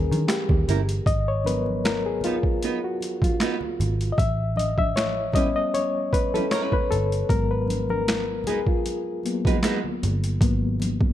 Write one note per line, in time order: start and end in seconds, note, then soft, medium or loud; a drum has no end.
0.00 1.08 E3 medium
0.00 1.08 G3 medium
0.00 1.08 C#4 medium
0.00 0.30 G#4 medium
0.00 1.08 A#4 medium
0.00 1.07 B4 medium
0.11 0.25 D#3 loud
0.11 closed hi-hat soft
0.11 high conga medium
0.28 0.84 G4 medium
0.28 finger snap medium
0.28 snare loud
0.28 closed hi-hat medium
0.49 0.64 D#2 medium
0.49 kick medium
0.49 low conga medium
0.68 0.99 G1 medium
0.68 0.79 G3 medium
0.68 0.79 C#4 medium
0.68 0.80 E4 medium
0.68 0.80 A#4 medium
0.68 closed hi-hat medium
0.68 low conga medium
0.89 closed hi-hat medium
1.06 2.41 G#1 medium
1.06 1.28 D#5 loud
1.06 kick loud
1.06 closed hi-hat medium
1.06 muted conga soft
1.28 1.46 C#5 medium
1.44 4.14 F#3 soft
1.44 4.15 B3 medium
1.44 1.84 A#4 soft
1.44 1.86 B4 medium
1.44 closed hi-hat medium
1.44 muted conga soft
1.44 high conga medium
1.66 high conga medium
1.84 2.06 A#4 medium
1.84 finger snap medium
1.84 snare loud
1.84 closed hi-hat medium
1.84 muted conga soft
1.84 high conga soft
2.06 2.24 G#4 medium
2.21 2.35 B3 medium
2.21 2.86 F4 medium
2.21 closed hi-hat medium
2.21 muted conga soft
2.21 low conga medium
2.25 2.36 D#4 medium
2.25 2.36 F#4 medium
2.25 2.36 B4 medium
2.43 kick medium
2.63 2.77 B3 medium
2.63 2.78 D#4 medium
2.63 2.78 F#4 medium
2.63 2.78 B4 medium
2.63 closed hi-hat medium
2.63 muted conga soft
2.84 3.24 F#4 medium
3.01 closed hi-hat medium
3.01 muted conga soft
3.22 3.59 F4 medium
3.22 kick medium
3.22 closed hi-hat soft
3.22 high conga medium
3.40 3.55 B3 medium
3.40 3.55 D#4 medium
3.40 3.55 F#4 medium
3.40 3.56 B4 medium
3.40 finger snap medium
3.40 snare loud
3.40 closed hi-hat medium
3.40 muted conga soft
3.61 low conga medium
3.80 4.11 G#1 medium
3.80 closed hi-hat medium
3.80 muted conga soft
3.80 low conga medium
4.01 closed hi-hat soft
4.12 4.18 D#5 medium
4.17 5.52 A1 loud
4.17 4.58 E5 loud
4.17 kick loud
4.17 closed hi-hat medium
4.17 muted conga soft
4.56 4.79 D#5 loud
4.56 closed hi-hat medium
4.56 muted conga soft
4.56 high conga medium
4.78 4.97 E5 loud
4.78 kick medium
4.78 high conga medium
4.95 5.36 C#5 medium
4.95 finger snap medium
4.95 snare loud
4.95 closed hi-hat medium
4.95 muted conga soft
4.95 high conga soft
5.32 7.25 G3 medium
5.32 5.47 G3 medium
5.32 7.26 B3 soft
5.32 5.47 C#4 medium
5.32 7.26 C#4 medium
5.32 5.55 D#5 loud
5.32 kick loud
5.32 closed hi-hat medium
5.32 low conga medium
5.37 5.47 E4 medium
5.37 5.47 B4 medium
5.56 5.74 D#5 medium
5.74 6.14 C#5 medium
5.74 closed hi-hat medium
5.74 muted conga soft
6.12 6.35 B4 medium
6.12 kick medium
6.12 closed hi-hat medium
6.12 muted conga soft
6.34 6.44 G3 medium
6.34 6.44 C#4 medium
6.34 6.44 E4 medium
6.34 6.50 A4 medium
6.34 6.44 B4 medium
6.34 closed hi-hat soft
6.34 high conga medium
6.51 6.74 G3 medium
6.51 6.74 C#4 medium
6.51 6.74 E4 medium
6.51 6.74 B4 medium
6.51 6.74 C#5 medium
6.51 finger snap medium
6.51 snare loud
6.51 closed hi-hat medium
6.51 muted conga soft
6.72 6.91 B4 medium
6.72 kick medium
6.72 low conga medium
6.91 7.22 G1 medium
6.91 7.27 A4 medium
6.91 closed hi-hat medium
6.91 muted conga soft
6.91 low conga medium
7.12 closed hi-hat soft
7.29 8.64 G#1 medium
7.29 9.24 F#3 soft
7.29 10.38 G#3 medium
7.29 9.25 B3 medium
7.29 7.51 A#4 medium
7.29 kick loud
7.29 closed hi-hat medium
7.51 7.87 B4 medium
7.68 closed hi-hat medium
7.68 high conga medium
7.89 8.48 A#4 medium
7.89 high conga medium
8.07 finger snap medium
8.07 snare loud
8.07 closed hi-hat medium
8.07 high conga medium
8.44 8.58 G#3 medium
8.44 8.69 G#4 medium
8.44 closed hi-hat medium
8.44 muted conga soft
8.44 low conga medium
8.48 8.59 D#4 medium
8.48 8.59 F#4 medium
8.48 8.59 B4 medium
8.67 9.04 F4 medium
8.67 kick medium
8.86 closed hi-hat medium
8.86 muted conga soft
9.23 9.60 F#3 soft
9.23 9.60 A#3 soft
9.23 9.60 B3 medium
9.23 closed hi-hat medium
9.23 muted conga soft
9.45 9.56 G#3 medium
9.45 9.56 D#4 medium
9.45 9.56 F#4 medium
9.45 9.56 B4 medium
9.45 kick medium
9.45 closed hi-hat soft
9.45 high conga medium
9.63 9.78 G#3 loud
9.63 9.78 D#4 medium
9.63 9.79 F#4 medium
9.63 9.79 B4 loud
9.63 finger snap medium
9.63 snare medium
9.63 closed hi-hat medium
9.63 muted conga soft
9.84 low conga medium
10.03 10.41 G1 medium
10.03 closed hi-hat medium
10.03 muted conga soft
10.03 low conga medium
10.24 closed hi-hat soft
10.41 11.13 G#1 loud
10.41 11.13 F#3 soft
10.41 11.13 A#3 soft
10.41 11.13 B3 medium
10.41 kick loud
10.41 closed hi-hat medium
10.80 closed hi-hat medium
10.80 muted conga soft
10.80 high conga medium
11.01 kick medium
11.01 high conga medium